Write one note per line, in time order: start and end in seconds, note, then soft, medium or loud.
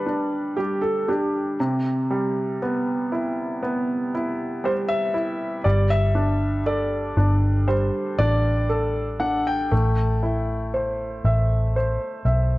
0.00 0.58 G3 soft
0.00 0.06 D4 soft
0.00 0.59 B4 medium
0.06 1.07 D4 soft
0.56 1.56 G3 soft
0.56 0.80 G4 medium
0.81 1.08 A4 medium
1.08 1.57 D4 soft
1.08 2.56 G4 medium
1.60 5.62 C3 soft
2.10 4.09 G3 soft
2.62 3.61 B3 soft
3.12 4.13 E4 soft
3.63 5.61 B3 soft
4.15 5.13 E4 soft
4.64 5.62 G3 soft
4.64 4.71 C5 medium
4.89 5.61 E5 medium
5.14 5.64 E4 soft
5.64 7.14 G1 medium
5.64 7.66 G3 soft
5.64 5.88 D5 medium
5.90 6.63 E5 medium
6.15 7.15 D4 soft
6.66 8.66 A4 soft
6.66 7.71 D5 medium
7.17 7.89 G1 medium
7.17 8.18 D4 soft
7.68 9.67 G3 soft
7.68 8.20 C5 medium
8.19 9.67 A1 medium
8.19 9.19 D4 soft
8.19 9.24 D5 medium
8.69 9.68 A4 soft
9.20 9.70 D4 soft
9.20 9.44 F#5 medium
9.47 12.58 G5 medium
9.71 11.20 A1 medium
9.71 12.58 A3 medium
10.23 12.22 E4 soft
10.74 11.75 C5 soft
11.25 11.97 A1 medium
11.25 12.24 E5 soft
11.76 12.58 C5 soft
12.25 12.58 B1 medium
12.25 12.58 E5 soft